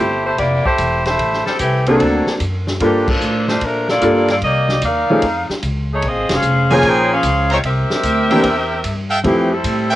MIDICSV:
0, 0, Header, 1, 7, 480
1, 0, Start_track
1, 0, Key_signature, -1, "major"
1, 0, Tempo, 402145
1, 1429, Time_signature, 4, 2, 24, 8
1, 11881, End_track
2, 0, Start_track
2, 0, Title_t, "Trumpet section"
2, 0, Program_c, 0, 61
2, 8001, Note_on_c, 0, 80, 103
2, 8003, Note_on_c, 0, 72, 78
2, 8004, Note_on_c, 0, 70, 96
2, 8004, Note_on_c, 0, 73, 83
2, 8606, Note_off_c, 0, 80, 0
2, 8607, Note_off_c, 0, 70, 0
2, 8607, Note_off_c, 0, 72, 0
2, 8607, Note_off_c, 0, 73, 0
2, 8957, Note_on_c, 0, 72, 83
2, 8957, Note_on_c, 0, 82, 91
2, 8958, Note_on_c, 0, 76, 82
2, 8959, Note_on_c, 0, 70, 92
2, 9064, Note_off_c, 0, 72, 0
2, 9064, Note_off_c, 0, 76, 0
2, 9064, Note_off_c, 0, 82, 0
2, 9065, Note_off_c, 0, 70, 0
2, 9910, Note_on_c, 0, 76, 86
2, 9911, Note_on_c, 0, 72, 77
2, 9911, Note_on_c, 0, 79, 97
2, 9912, Note_on_c, 0, 70, 91
2, 10519, Note_off_c, 0, 72, 0
2, 10519, Note_off_c, 0, 76, 0
2, 10519, Note_off_c, 0, 79, 0
2, 10520, Note_off_c, 0, 70, 0
2, 10865, Note_on_c, 0, 69, 93
2, 10865, Note_on_c, 0, 76, 92
2, 10865, Note_on_c, 0, 79, 105
2, 10866, Note_on_c, 0, 77, 93
2, 10975, Note_off_c, 0, 69, 0
2, 10975, Note_off_c, 0, 76, 0
2, 10975, Note_off_c, 0, 79, 0
2, 10976, Note_off_c, 0, 77, 0
2, 11822, Note_on_c, 0, 77, 83
2, 11822, Note_on_c, 0, 79, 109
2, 11825, Note_on_c, 0, 69, 88
2, 11825, Note_on_c, 0, 76, 93
2, 11881, Note_off_c, 0, 69, 0
2, 11881, Note_off_c, 0, 76, 0
2, 11881, Note_off_c, 0, 77, 0
2, 11881, Note_off_c, 0, 79, 0
2, 11881, End_track
3, 0, Start_track
3, 0, Title_t, "Saxophone section"
3, 0, Program_c, 1, 65
3, 0, Note_on_c, 1, 57, 84
3, 0, Note_on_c, 1, 64, 92
3, 0, Note_on_c, 1, 67, 91
3, 0, Note_on_c, 1, 72, 100
3, 280, Note_off_c, 1, 67, 0
3, 280, Note_off_c, 1, 72, 0
3, 282, Note_off_c, 1, 57, 0
3, 284, Note_off_c, 1, 64, 0
3, 312, Note_on_c, 1, 64, 81
3, 316, Note_on_c, 1, 57, 83
3, 316, Note_on_c, 1, 72, 99
3, 317, Note_on_c, 1, 67, 75
3, 442, Note_off_c, 1, 67, 0
3, 447, Note_off_c, 1, 64, 0
3, 456, Note_on_c, 1, 67, 87
3, 458, Note_on_c, 1, 74, 98
3, 460, Note_off_c, 1, 72, 0
3, 460, Note_on_c, 1, 58, 88
3, 461, Note_off_c, 1, 57, 0
3, 461, Note_on_c, 1, 64, 85
3, 761, Note_off_c, 1, 67, 0
3, 762, Note_off_c, 1, 74, 0
3, 763, Note_off_c, 1, 58, 0
3, 763, Note_off_c, 1, 64, 0
3, 785, Note_on_c, 1, 57, 81
3, 788, Note_on_c, 1, 67, 85
3, 791, Note_on_c, 1, 64, 77
3, 793, Note_on_c, 1, 72, 97
3, 1234, Note_off_c, 1, 57, 0
3, 1235, Note_off_c, 1, 67, 0
3, 1237, Note_off_c, 1, 64, 0
3, 1239, Note_off_c, 1, 72, 0
3, 1267, Note_on_c, 1, 64, 90
3, 1269, Note_on_c, 1, 57, 87
3, 1269, Note_on_c, 1, 72, 89
3, 1271, Note_on_c, 1, 67, 75
3, 1716, Note_off_c, 1, 64, 0
3, 1717, Note_off_c, 1, 57, 0
3, 1717, Note_off_c, 1, 72, 0
3, 1718, Note_off_c, 1, 67, 0
3, 1741, Note_on_c, 1, 69, 87
3, 1744, Note_on_c, 1, 60, 74
3, 1744, Note_on_c, 1, 64, 69
3, 1748, Note_on_c, 1, 55, 73
3, 1894, Note_off_c, 1, 69, 0
3, 1895, Note_off_c, 1, 60, 0
3, 1895, Note_off_c, 1, 64, 0
3, 1897, Note_off_c, 1, 55, 0
3, 1906, Note_on_c, 1, 57, 73
3, 1907, Note_on_c, 1, 67, 88
3, 1908, Note_on_c, 1, 60, 72
3, 1910, Note_on_c, 1, 52, 75
3, 2207, Note_off_c, 1, 57, 0
3, 2208, Note_off_c, 1, 67, 0
3, 2209, Note_off_c, 1, 52, 0
3, 2209, Note_off_c, 1, 60, 0
3, 2231, Note_on_c, 1, 60, 66
3, 2232, Note_on_c, 1, 62, 69
3, 2233, Note_on_c, 1, 54, 67
3, 2235, Note_on_c, 1, 69, 79
3, 2826, Note_off_c, 1, 60, 0
3, 2827, Note_off_c, 1, 62, 0
3, 2828, Note_off_c, 1, 54, 0
3, 2828, Note_off_c, 1, 69, 0
3, 3375, Note_on_c, 1, 53, 70
3, 3376, Note_on_c, 1, 58, 75
3, 3377, Note_on_c, 1, 62, 69
3, 3377, Note_on_c, 1, 67, 90
3, 3664, Note_off_c, 1, 53, 0
3, 3664, Note_off_c, 1, 58, 0
3, 3665, Note_off_c, 1, 62, 0
3, 3665, Note_off_c, 1, 67, 0
3, 3678, Note_on_c, 1, 53, 85
3, 3680, Note_on_c, 1, 58, 74
3, 3680, Note_on_c, 1, 62, 84
3, 3680, Note_on_c, 1, 69, 91
3, 4149, Note_off_c, 1, 62, 0
3, 4157, Note_off_c, 1, 53, 0
3, 4158, Note_off_c, 1, 58, 0
3, 4158, Note_off_c, 1, 69, 0
3, 4161, Note_on_c, 1, 65, 74
3, 4161, Note_on_c, 1, 72, 81
3, 4163, Note_on_c, 1, 57, 81
3, 4164, Note_on_c, 1, 62, 70
3, 4306, Note_off_c, 1, 65, 0
3, 4306, Note_off_c, 1, 72, 0
3, 4307, Note_off_c, 1, 57, 0
3, 4307, Note_off_c, 1, 62, 0
3, 4330, Note_on_c, 1, 57, 80
3, 4334, Note_on_c, 1, 53, 72
3, 4334, Note_on_c, 1, 70, 87
3, 4335, Note_on_c, 1, 62, 78
3, 4644, Note_off_c, 1, 57, 0
3, 4646, Note_off_c, 1, 53, 0
3, 4646, Note_off_c, 1, 62, 0
3, 4646, Note_off_c, 1, 70, 0
3, 4653, Note_on_c, 1, 74, 105
3, 4654, Note_on_c, 1, 69, 88
3, 4656, Note_on_c, 1, 58, 86
3, 4658, Note_on_c, 1, 65, 92
3, 5092, Note_off_c, 1, 69, 0
3, 5092, Note_off_c, 1, 74, 0
3, 5094, Note_off_c, 1, 58, 0
3, 5095, Note_off_c, 1, 65, 0
3, 5140, Note_on_c, 1, 65, 79
3, 5141, Note_on_c, 1, 58, 78
3, 5141, Note_on_c, 1, 69, 82
3, 5147, Note_on_c, 1, 74, 91
3, 5206, Note_off_c, 1, 65, 0
3, 5207, Note_off_c, 1, 58, 0
3, 5207, Note_off_c, 1, 69, 0
3, 5211, Note_off_c, 1, 74, 0
3, 5298, Note_on_c, 1, 58, 84
3, 5299, Note_on_c, 1, 67, 89
3, 5299, Note_on_c, 1, 74, 82
3, 5301, Note_on_c, 1, 75, 103
3, 5734, Note_off_c, 1, 58, 0
3, 5735, Note_off_c, 1, 67, 0
3, 5735, Note_off_c, 1, 74, 0
3, 5736, Note_off_c, 1, 75, 0
3, 5784, Note_on_c, 1, 74, 91
3, 5786, Note_on_c, 1, 77, 95
3, 5787, Note_on_c, 1, 70, 83
3, 5791, Note_on_c, 1, 63, 80
3, 6250, Note_off_c, 1, 74, 0
3, 6251, Note_off_c, 1, 70, 0
3, 6572, Note_off_c, 1, 77, 0
3, 6575, Note_off_c, 1, 63, 0
3, 7083, Note_on_c, 1, 63, 81
3, 7084, Note_on_c, 1, 68, 70
3, 7086, Note_on_c, 1, 57, 73
3, 7088, Note_on_c, 1, 73, 88
3, 7209, Note_off_c, 1, 63, 0
3, 7210, Note_off_c, 1, 68, 0
3, 7211, Note_off_c, 1, 57, 0
3, 7212, Note_off_c, 1, 73, 0
3, 7242, Note_on_c, 1, 60, 86
3, 7242, Note_on_c, 1, 65, 81
3, 7243, Note_on_c, 1, 68, 84
3, 7245, Note_on_c, 1, 75, 99
3, 7540, Note_off_c, 1, 60, 0
3, 7540, Note_off_c, 1, 65, 0
3, 7541, Note_off_c, 1, 68, 0
3, 7542, Note_off_c, 1, 75, 0
3, 7553, Note_on_c, 1, 68, 98
3, 7556, Note_on_c, 1, 72, 87
3, 7558, Note_on_c, 1, 77, 109
3, 7559, Note_on_c, 1, 61, 98
3, 8015, Note_off_c, 1, 68, 0
3, 8016, Note_off_c, 1, 72, 0
3, 8017, Note_off_c, 1, 77, 0
3, 8018, Note_off_c, 1, 61, 0
3, 8036, Note_on_c, 1, 65, 78
3, 8040, Note_on_c, 1, 73, 86
3, 8042, Note_on_c, 1, 72, 83
3, 8044, Note_on_c, 1, 80, 101
3, 8175, Note_off_c, 1, 65, 0
3, 8177, Note_off_c, 1, 73, 0
3, 8178, Note_off_c, 1, 72, 0
3, 8179, Note_off_c, 1, 80, 0
3, 8199, Note_on_c, 1, 72, 90
3, 8202, Note_on_c, 1, 68, 90
3, 8203, Note_on_c, 1, 63, 87
3, 8205, Note_on_c, 1, 79, 105
3, 8499, Note_off_c, 1, 72, 0
3, 8500, Note_off_c, 1, 63, 0
3, 8500, Note_off_c, 1, 68, 0
3, 8501, Note_off_c, 1, 79, 0
3, 8518, Note_on_c, 1, 68, 95
3, 8518, Note_on_c, 1, 72, 94
3, 8518, Note_on_c, 1, 77, 96
3, 8519, Note_on_c, 1, 61, 92
3, 8945, Note_off_c, 1, 61, 0
3, 8945, Note_off_c, 1, 68, 0
3, 8945, Note_off_c, 1, 72, 0
3, 8945, Note_off_c, 1, 77, 0
3, 8985, Note_on_c, 1, 73, 92
3, 8988, Note_on_c, 1, 56, 80
3, 8993, Note_on_c, 1, 60, 81
3, 8994, Note_on_c, 1, 65, 82
3, 9050, Note_off_c, 1, 73, 0
3, 9052, Note_off_c, 1, 56, 0
3, 9056, Note_off_c, 1, 60, 0
3, 9057, Note_off_c, 1, 65, 0
3, 9147, Note_on_c, 1, 76, 104
3, 9150, Note_on_c, 1, 60, 92
3, 9150, Note_on_c, 1, 67, 82
3, 9150, Note_on_c, 1, 70, 92
3, 10842, Note_off_c, 1, 76, 0
3, 10843, Note_off_c, 1, 60, 0
3, 10843, Note_off_c, 1, 67, 0
3, 10844, Note_off_c, 1, 70, 0
3, 11055, Note_on_c, 1, 67, 88
3, 11057, Note_on_c, 1, 60, 81
3, 11058, Note_on_c, 1, 52, 75
3, 11058, Note_on_c, 1, 57, 68
3, 11343, Note_off_c, 1, 67, 0
3, 11344, Note_off_c, 1, 57, 0
3, 11344, Note_off_c, 1, 60, 0
3, 11345, Note_off_c, 1, 52, 0
3, 11366, Note_on_c, 1, 55, 77
3, 11366, Note_on_c, 1, 69, 100
3, 11368, Note_on_c, 1, 60, 84
3, 11372, Note_on_c, 1, 64, 84
3, 11829, Note_off_c, 1, 64, 0
3, 11838, Note_off_c, 1, 69, 0
3, 11839, Note_off_c, 1, 55, 0
3, 11839, Note_off_c, 1, 60, 0
3, 11843, Note_on_c, 1, 64, 76
3, 11844, Note_on_c, 1, 67, 83
3, 11881, Note_off_c, 1, 64, 0
3, 11881, Note_off_c, 1, 67, 0
3, 11881, End_track
4, 0, Start_track
4, 0, Title_t, "Upright piano"
4, 0, Program_c, 2, 0
4, 2239, Note_on_c, 2, 58, 65
4, 2241, Note_on_c, 2, 60, 61
4, 2241, Note_on_c, 2, 62, 57
4, 2246, Note_on_c, 2, 66, 55
4, 2257, Note_on_c, 2, 69, 72
4, 2844, Note_off_c, 2, 58, 0
4, 2845, Note_off_c, 2, 60, 0
4, 2845, Note_off_c, 2, 62, 0
4, 2847, Note_off_c, 2, 66, 0
4, 2852, Note_off_c, 2, 69, 0
4, 3349, Note_on_c, 2, 55, 53
4, 3351, Note_on_c, 2, 58, 50
4, 3359, Note_on_c, 2, 65, 58
4, 3360, Note_on_c, 2, 62, 58
4, 3368, Note_on_c, 2, 69, 68
4, 3641, Note_off_c, 2, 55, 0
4, 3642, Note_off_c, 2, 58, 0
4, 3645, Note_off_c, 2, 65, 0
4, 3646, Note_off_c, 2, 62, 0
4, 3650, Note_off_c, 2, 69, 0
4, 4797, Note_on_c, 2, 55, 72
4, 4800, Note_on_c, 2, 58, 68
4, 4801, Note_on_c, 2, 62, 68
4, 4805, Note_on_c, 2, 65, 62
4, 4811, Note_on_c, 2, 69, 86
4, 5085, Note_off_c, 2, 55, 0
4, 5087, Note_off_c, 2, 58, 0
4, 5087, Note_off_c, 2, 62, 0
4, 5090, Note_off_c, 2, 65, 0
4, 5092, Note_off_c, 2, 69, 0
4, 6087, Note_on_c, 2, 53, 60
4, 6095, Note_on_c, 2, 57, 61
4, 6095, Note_on_c, 2, 61, 63
4, 6100, Note_on_c, 2, 63, 53
4, 6104, Note_on_c, 2, 68, 64
4, 6225, Note_off_c, 2, 53, 0
4, 6229, Note_off_c, 2, 57, 0
4, 6229, Note_off_c, 2, 61, 0
4, 6231, Note_off_c, 2, 63, 0
4, 6233, Note_off_c, 2, 68, 0
4, 8004, Note_on_c, 2, 58, 59
4, 8007, Note_on_c, 2, 53, 62
4, 8008, Note_on_c, 2, 72, 55
4, 8017, Note_on_c, 2, 68, 73
4, 8018, Note_on_c, 2, 61, 60
4, 8607, Note_off_c, 2, 58, 0
4, 8608, Note_off_c, 2, 53, 0
4, 8609, Note_off_c, 2, 72, 0
4, 8614, Note_off_c, 2, 61, 0
4, 8614, Note_off_c, 2, 68, 0
4, 9916, Note_on_c, 2, 52, 61
4, 9918, Note_on_c, 2, 58, 63
4, 9921, Note_on_c, 2, 60, 62
4, 9924, Note_on_c, 2, 62, 59
4, 9930, Note_on_c, 2, 67, 71
4, 10058, Note_off_c, 2, 52, 0
4, 10059, Note_off_c, 2, 58, 0
4, 10061, Note_off_c, 2, 60, 0
4, 10062, Note_off_c, 2, 62, 0
4, 10065, Note_off_c, 2, 67, 0
4, 11022, Note_on_c, 2, 53, 54
4, 11031, Note_on_c, 2, 57, 51
4, 11034, Note_on_c, 2, 60, 50
4, 11041, Note_on_c, 2, 64, 51
4, 11042, Note_on_c, 2, 67, 63
4, 11316, Note_off_c, 2, 53, 0
4, 11320, Note_off_c, 2, 57, 0
4, 11322, Note_off_c, 2, 60, 0
4, 11325, Note_off_c, 2, 64, 0
4, 11326, Note_off_c, 2, 67, 0
4, 11881, End_track
5, 0, Start_track
5, 0, Title_t, "Upright bass"
5, 0, Program_c, 3, 32
5, 0, Note_on_c, 3, 31, 89
5, 452, Note_off_c, 3, 31, 0
5, 461, Note_on_c, 3, 29, 79
5, 764, Note_off_c, 3, 29, 0
5, 943, Note_on_c, 3, 28, 86
5, 1412, Note_off_c, 3, 28, 0
5, 1422, Note_on_c, 3, 33, 76
5, 1725, Note_off_c, 3, 33, 0
5, 1906, Note_on_c, 3, 36, 85
5, 2375, Note_off_c, 3, 36, 0
5, 2392, Note_on_c, 3, 38, 73
5, 2691, Note_off_c, 3, 38, 0
5, 2866, Note_on_c, 3, 42, 95
5, 3335, Note_off_c, 3, 42, 0
5, 3347, Note_on_c, 3, 43, 83
5, 3816, Note_off_c, 3, 43, 0
5, 3825, Note_on_c, 3, 45, 84
5, 4296, Note_off_c, 3, 45, 0
5, 4308, Note_on_c, 3, 46, 70
5, 4777, Note_off_c, 3, 46, 0
5, 4800, Note_on_c, 3, 43, 95
5, 5264, Note_off_c, 3, 43, 0
5, 5274, Note_on_c, 3, 36, 77
5, 5741, Note_off_c, 3, 36, 0
5, 5756, Note_on_c, 3, 39, 87
5, 6055, Note_off_c, 3, 39, 0
5, 6232, Note_on_c, 3, 41, 72
5, 6533, Note_off_c, 3, 41, 0
5, 6714, Note_on_c, 3, 37, 94
5, 7181, Note_off_c, 3, 37, 0
5, 7193, Note_on_c, 3, 34, 76
5, 7353, Note_off_c, 3, 34, 0
5, 7353, Note_on_c, 3, 32, 53
5, 7501, Note_off_c, 3, 32, 0
5, 7509, Note_on_c, 3, 29, 68
5, 7661, Note_off_c, 3, 29, 0
5, 7670, Note_on_c, 3, 29, 80
5, 8138, Note_off_c, 3, 29, 0
5, 8153, Note_on_c, 3, 34, 79
5, 8620, Note_off_c, 3, 34, 0
5, 8634, Note_on_c, 3, 37, 91
5, 9100, Note_off_c, 3, 37, 0
5, 9112, Note_on_c, 3, 36, 74
5, 9412, Note_off_c, 3, 36, 0
5, 9591, Note_on_c, 3, 38, 89
5, 10058, Note_off_c, 3, 38, 0
5, 10072, Note_on_c, 3, 40, 77
5, 10538, Note_off_c, 3, 40, 0
5, 10554, Note_on_c, 3, 43, 87
5, 11018, Note_off_c, 3, 43, 0
5, 11028, Note_on_c, 3, 41, 81
5, 11495, Note_off_c, 3, 41, 0
5, 11507, Note_on_c, 3, 45, 90
5, 11881, Note_off_c, 3, 45, 0
5, 11881, End_track
6, 0, Start_track
6, 0, Title_t, "Muted upright bass strokes"
6, 1761, Note_on_c, 9, 29, 38
6, 1880, Note_off_c, 9, 29, 0
6, 2701, Note_on_c, 9, 29, 43
6, 2820, Note_off_c, 9, 29, 0
6, 6555, Note_on_c, 9, 29, 43
6, 6674, Note_off_c, 9, 29, 0
6, 11881, End_track
7, 0, Start_track
7, 0, Title_t, "Drums"
7, 457, Note_on_c, 9, 51, 61
7, 463, Note_on_c, 9, 36, 21
7, 576, Note_off_c, 9, 51, 0
7, 582, Note_off_c, 9, 36, 0
7, 784, Note_on_c, 9, 36, 48
7, 903, Note_off_c, 9, 36, 0
7, 934, Note_on_c, 9, 44, 49
7, 934, Note_on_c, 9, 51, 62
7, 943, Note_on_c, 9, 36, 24
7, 1053, Note_off_c, 9, 44, 0
7, 1053, Note_off_c, 9, 51, 0
7, 1063, Note_off_c, 9, 36, 0
7, 1259, Note_on_c, 9, 51, 44
7, 1265, Note_on_c, 9, 38, 37
7, 1378, Note_off_c, 9, 51, 0
7, 1384, Note_off_c, 9, 38, 0
7, 1421, Note_on_c, 9, 51, 62
7, 1424, Note_on_c, 9, 36, 18
7, 1540, Note_off_c, 9, 51, 0
7, 1544, Note_off_c, 9, 36, 0
7, 1589, Note_on_c, 9, 38, 25
7, 1708, Note_off_c, 9, 38, 0
7, 1746, Note_on_c, 9, 38, 44
7, 1865, Note_off_c, 9, 38, 0
7, 1898, Note_on_c, 9, 44, 57
7, 1898, Note_on_c, 9, 51, 65
7, 1905, Note_on_c, 9, 36, 26
7, 2017, Note_off_c, 9, 44, 0
7, 2017, Note_off_c, 9, 51, 0
7, 2025, Note_off_c, 9, 36, 0
7, 2224, Note_on_c, 9, 51, 50
7, 2344, Note_off_c, 9, 51, 0
7, 2385, Note_on_c, 9, 51, 58
7, 2388, Note_on_c, 9, 36, 21
7, 2505, Note_off_c, 9, 51, 0
7, 2508, Note_off_c, 9, 36, 0
7, 2706, Note_on_c, 9, 38, 41
7, 2825, Note_off_c, 9, 38, 0
7, 2863, Note_on_c, 9, 44, 60
7, 2863, Note_on_c, 9, 51, 65
7, 2868, Note_on_c, 9, 36, 22
7, 2983, Note_off_c, 9, 44, 0
7, 2983, Note_off_c, 9, 51, 0
7, 2987, Note_off_c, 9, 36, 0
7, 3188, Note_on_c, 9, 38, 53
7, 3308, Note_off_c, 9, 38, 0
7, 3344, Note_on_c, 9, 51, 62
7, 3350, Note_on_c, 9, 36, 20
7, 3463, Note_off_c, 9, 51, 0
7, 3470, Note_off_c, 9, 36, 0
7, 3671, Note_on_c, 9, 49, 82
7, 3673, Note_on_c, 9, 36, 81
7, 3790, Note_off_c, 9, 49, 0
7, 3792, Note_off_c, 9, 36, 0
7, 3829, Note_on_c, 9, 44, 62
7, 3948, Note_off_c, 9, 44, 0
7, 4154, Note_on_c, 9, 38, 54
7, 4274, Note_off_c, 9, 38, 0
7, 4308, Note_on_c, 9, 51, 62
7, 4314, Note_on_c, 9, 36, 26
7, 4428, Note_off_c, 9, 51, 0
7, 4433, Note_off_c, 9, 36, 0
7, 4636, Note_on_c, 9, 38, 46
7, 4756, Note_off_c, 9, 38, 0
7, 4791, Note_on_c, 9, 44, 54
7, 4791, Note_on_c, 9, 51, 58
7, 4796, Note_on_c, 9, 36, 19
7, 4911, Note_off_c, 9, 44, 0
7, 4911, Note_off_c, 9, 51, 0
7, 4916, Note_off_c, 9, 36, 0
7, 5111, Note_on_c, 9, 51, 43
7, 5117, Note_on_c, 9, 38, 34
7, 5230, Note_off_c, 9, 51, 0
7, 5236, Note_off_c, 9, 38, 0
7, 5270, Note_on_c, 9, 51, 53
7, 5275, Note_on_c, 9, 36, 22
7, 5389, Note_off_c, 9, 51, 0
7, 5395, Note_off_c, 9, 36, 0
7, 5592, Note_on_c, 9, 38, 53
7, 5711, Note_off_c, 9, 38, 0
7, 5747, Note_on_c, 9, 44, 47
7, 5747, Note_on_c, 9, 51, 69
7, 5756, Note_on_c, 9, 36, 20
7, 5866, Note_off_c, 9, 44, 0
7, 5866, Note_off_c, 9, 51, 0
7, 5876, Note_off_c, 9, 36, 0
7, 6228, Note_on_c, 9, 51, 67
7, 6237, Note_on_c, 9, 36, 25
7, 6347, Note_off_c, 9, 51, 0
7, 6356, Note_off_c, 9, 36, 0
7, 6560, Note_on_c, 9, 38, 45
7, 6679, Note_off_c, 9, 38, 0
7, 6713, Note_on_c, 9, 44, 56
7, 6713, Note_on_c, 9, 51, 60
7, 6719, Note_on_c, 9, 36, 18
7, 6832, Note_off_c, 9, 44, 0
7, 6832, Note_off_c, 9, 51, 0
7, 6838, Note_off_c, 9, 36, 0
7, 7188, Note_on_c, 9, 51, 58
7, 7197, Note_on_c, 9, 36, 17
7, 7307, Note_off_c, 9, 51, 0
7, 7316, Note_off_c, 9, 36, 0
7, 7509, Note_on_c, 9, 51, 66
7, 7515, Note_on_c, 9, 38, 78
7, 7629, Note_off_c, 9, 51, 0
7, 7635, Note_off_c, 9, 38, 0
7, 7659, Note_on_c, 9, 44, 54
7, 7778, Note_off_c, 9, 44, 0
7, 8150, Note_on_c, 9, 51, 61
7, 8155, Note_on_c, 9, 36, 24
7, 8270, Note_off_c, 9, 51, 0
7, 8275, Note_off_c, 9, 36, 0
7, 8629, Note_on_c, 9, 44, 60
7, 8629, Note_on_c, 9, 51, 65
7, 8634, Note_on_c, 9, 36, 20
7, 8749, Note_off_c, 9, 44, 0
7, 8749, Note_off_c, 9, 51, 0
7, 8753, Note_off_c, 9, 36, 0
7, 8950, Note_on_c, 9, 51, 42
7, 9070, Note_off_c, 9, 51, 0
7, 9113, Note_on_c, 9, 36, 21
7, 9113, Note_on_c, 9, 51, 63
7, 9233, Note_off_c, 9, 36, 0
7, 9233, Note_off_c, 9, 51, 0
7, 9434, Note_on_c, 9, 38, 58
7, 9553, Note_off_c, 9, 38, 0
7, 9588, Note_on_c, 9, 44, 57
7, 9588, Note_on_c, 9, 51, 69
7, 9592, Note_on_c, 9, 36, 21
7, 9708, Note_off_c, 9, 44, 0
7, 9708, Note_off_c, 9, 51, 0
7, 9711, Note_off_c, 9, 36, 0
7, 9914, Note_on_c, 9, 51, 45
7, 10033, Note_off_c, 9, 51, 0
7, 10068, Note_on_c, 9, 51, 69
7, 10072, Note_on_c, 9, 36, 20
7, 10187, Note_off_c, 9, 51, 0
7, 10192, Note_off_c, 9, 36, 0
7, 10549, Note_on_c, 9, 44, 52
7, 10549, Note_on_c, 9, 51, 68
7, 10552, Note_on_c, 9, 36, 18
7, 10668, Note_off_c, 9, 44, 0
7, 10668, Note_off_c, 9, 51, 0
7, 10671, Note_off_c, 9, 36, 0
7, 11029, Note_on_c, 9, 51, 63
7, 11030, Note_on_c, 9, 36, 25
7, 11149, Note_off_c, 9, 36, 0
7, 11149, Note_off_c, 9, 51, 0
7, 11506, Note_on_c, 9, 44, 59
7, 11506, Note_on_c, 9, 51, 77
7, 11508, Note_on_c, 9, 36, 22
7, 11625, Note_off_c, 9, 44, 0
7, 11625, Note_off_c, 9, 51, 0
7, 11627, Note_off_c, 9, 36, 0
7, 11881, End_track
0, 0, End_of_file